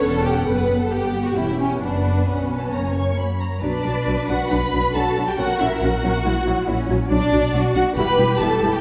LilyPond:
<<
  \new Staff \with { instrumentName = "Violin section" } { \time 4/4 \key b \minor \tempo 4 = 137 fis''2. g''4 | fis''4 fis''8 a''8 ais''8 cis'''8 b''8 ais''8 | d''4. fis''8 b''4 a''8. g''16 | fis''8 e''8 fis''2~ fis''8 r8 |
d''4. fis''8 b''4 a''8. g''16 | }
  \new Staff \with { instrumentName = "Violin section" } { \time 4/4 \key b \minor a'8 g'8 b'8. a'16 g'8. fis'16 e'8 cis'8 | d'4 cis'2 r4 | d'4. fis'8 b'4 a'8. g'16 | fis'8 e'8 fis'2~ fis'8 r8 |
d'4. fis'8 b'4 a'8. g'16 | }
  \new Staff \with { instrumentName = "Viola section" } { \time 4/4 \key b \minor << { a'2 g'2 | b'2 cis''4. r8 | d'8 d'8 d'8 d'8 d'8 d'8 d'8 d'8 | cis'8 cis'8 cis'8 cis'8 e'8 e'8 e'8 e'8 |
d'8 d'8 d'8 d'8 e'8 e'8 e'8 e'8 | } \\ { cis'4 b2 cis'4 | b2 ais4. r8 | fis8 fis8 fis8 fis8 fis8 fis8 fis8 fis8 | fis8 fis8 fis8 fis8 fis8 fis8 fis8 fis8 |
fis8 fis8 fis8 fis8 g8 g8 g8 g8 | } >> }
  \new Staff \with { instrumentName = "Cello section" } { \time 4/4 \key b \minor e,4 fis,4 g,4 e,4 | fis,4 b,4 fis,4 fis4 | b'2. fis'4 | ais'2 fis'4 cis'4 |
d'4 fis'4 g'2 | }
  \new Staff \with { instrumentName = "Double bass section" } { \clef bass \time 4/4 \key b \minor e,,4 fis,,4 g,,4 e,,4 | fis,,4 b,,4 fis,,4 fis,4 | b,,8 b,,8 b,,8 b,,8 b,,8 b,,8 b,,8 b,,8 | ais,,8 ais,,8 ais,,8 ais,,8 ais,,8 ais,,8 ais,,8 ais,,8 |
b,,8 b,,8 b,,8 b,,8 e,,8 e,,8 e,,8 e,,8 | }
>>